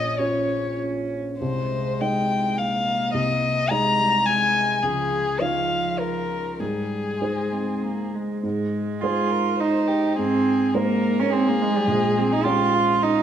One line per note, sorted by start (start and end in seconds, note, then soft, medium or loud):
0.00 0.18 A#1 soft
0.00 1.15 C#4 soft
0.00 0.20 D#5 medium
0.19 1.36 C#4 soft
0.19 1.36 F4 soft
0.19 0.80 C#5 medium
0.19 1.37 C#5 soft
1.40 1.98 C2 soft
1.40 2.58 G#3 soft
1.40 2.02 C5 medium
2.01 3.10 G#3 soft
2.01 3.10 D#4 soft
2.01 3.10 D#5 soft
2.01 2.60 G5 medium
2.56 3.70 A#3 soft
2.56 3.13 F5 medium
3.14 3.69 C2 soft
3.14 3.72 D#5 medium
3.70 4.00 G#3 medium
3.70 4.79 G#3 soft
3.70 4.79 D#4 soft
3.70 4.79 D#5 soft
3.70 4.28 A#5 medium
3.98 4.28 G3 medium
4.26 4.82 G#3 medium
4.26 4.84 G#5 medium
4.82 5.38 C#2 soft
4.82 5.36 F3 soft
4.82 5.42 G#4 medium
5.40 6.61 F3 medium
5.40 6.55 F3 soft
5.40 6.55 D#4 soft
5.40 6.55 C#5 soft
5.40 6.01 F5 medium
5.99 6.61 A#4 medium
6.59 7.19 G#2 soft
6.59 7.14 G3 soft
6.59 8.14 G#4 soft
7.21 8.40 G#3 soft
7.21 7.53 G#3 soft
7.21 8.40 D#4 soft
7.21 8.40 C5 soft
7.52 7.84 C4 soft
7.82 8.16 A#3 soft
8.15 8.43 G#3 soft
8.43 9.00 G#2 soft
8.43 9.03 G#3 medium
9.01 10.15 G#3 soft
9.01 10.15 D#4 soft
9.01 9.62 F4 medium
9.01 9.32 G#4 soft
9.01 10.15 C5 soft
9.30 9.57 A#4 medium
9.58 10.18 D#4 medium
9.58 9.89 C5 medium
9.88 10.18 G4 medium
10.16 10.74 G#2 medium
10.16 10.75 C4 medium
10.16 10.76 G#4 medium
10.74 11.84 G#3 soft
10.74 11.21 A#3 medium
10.74 11.84 D#4 soft
10.74 11.32 A#4 medium
10.74 11.84 C5 medium
11.19 11.34 C#4 medium
11.30 11.49 C4 medium
11.30 12.46 G#4 medium
11.48 11.63 A#3 medium
11.61 11.77 G#3 medium
11.76 11.90 G3 medium
11.87 12.43 A#1 medium
11.87 12.19 G#3 medium
12.17 12.34 C4 medium
12.32 12.46 D#4 medium
12.44 13.23 G#3 soft
12.44 13.23 C#4 soft
12.44 13.04 F4 medium
12.44 12.76 G4 medium
12.44 13.23 C#5 soft
12.74 13.23 F4 medium
13.03 13.23 D#4 medium